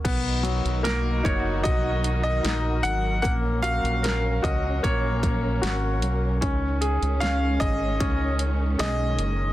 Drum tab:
CC |x---------------|----------------|----------------|
HH |x-xxx-x-x-x-x-x-|x-xxx-x-x-x-x-x-|x-xxx-x-x-x-x-x-|
SD |----o-------o---|----o-------o---|----o-------o---|
BD |o-----o-o-------|o-----o-o-o-----|o-----o-o-------|